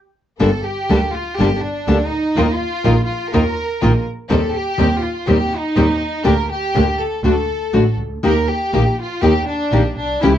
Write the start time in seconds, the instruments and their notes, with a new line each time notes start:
0.40 double bass G1, nylon-string guitar D3 G3 A#3 D4 A4, string section A#3 G4 A4, violin section A4
0.65 violin section G4
0.89 double bass D2, nylon-string guitar D3 G3 A#3 D4 A4, string section A#3 G4 A4
1.14 violin section F4
1.37 double bass G1, nylon-string guitar D3 G3 A#3 D4 A4, string section A#3 G4 A4, violin section G4
1.61 violin section D4
1.87 double bass D2, nylon-string guitar D3 G3 A#3 D4 A4, string section A#3 G4 A4
2.08 violin section D#4
2.36 double bass D#2, nylon-string guitar D#3 A#3 D#4 F4 A#4, string section A#3 D#4 F4
2.56 violin section F4
2.84 double bass A#1, nylon-string guitar D#3 A#3 D#4 F4 A#4, string section A#3 D#4 F4
3.06 violin section F4
3.31 double bass D#2, nylon-string guitar D#3 A#3 D#4 F4 A#4, string section A#3 D#4 F4, violin section A#4
3.81 double bass A#1, nylon-string guitar D#3 A#3 D#4 F4 A#4, string section A#3 D#4 F4
4.29 double bass D#2, nylon-string guitar D#3 G3 C4, string section C4 D#4 G4, violin section A4
4.54 violin section G4
4.78 double bass D#2, nylon-string guitar D#3 G3 C4, string section C4 D#4 G4
5.02 violin section F4
5.27 double bass D#2, nylon-string guitar D#3 G3 C4, string section C4 D#4 G4, violin section G4
5.52 violin section D#4
5.76 double bass D#2, nylon-string guitar D#3 G3 C4, string section C4 D#4 G4
6.24 double bass D2, nylon-string guitar D3 A#3 D4 G4, string section A#3 D4 G4, violin section A#4
6.52 violin section G4
6.74 double bass D2, nylon-string guitar D3 A#3 D4 G4, string section A#3 D4 G4
6.98 violin section A4
7.24 double bass D2, nylon-string guitar D3 A3 D4 F#4, string section A3 D4 F#4, violin section A4
7.73 double bass A1, nylon-string guitar D3 A3 D4 F#4, string section A3 D4 F#4
7.98 double bass C#2
8.23 double bass D#2, nylon-string guitar D#3 A#3 D#4 G4, string section A#3 D#4 G4, violin section A#4
8.50 violin section G4
8.73 double bass A#1, nylon-string guitar D#3 A#3 D#4 G4, string section A#3 D#4 G4
9.00 violin section F4
9.22 double bass D#2, nylon-string guitar D#3 A#3 D#4 G4, string section A#3 D#4 G4, violin section G4
9.48 violin section D4
9.72 double bass A#1, nylon-string guitar D#3 A#3 D#4 G4, string section A#3 D#4 G4
9.97 double bass B1, violin section D4
10.21 double bass C#2, nylon-string guitar C#3 E3 A3 C#4 G4, string section A3 C#4 G4, violin section E4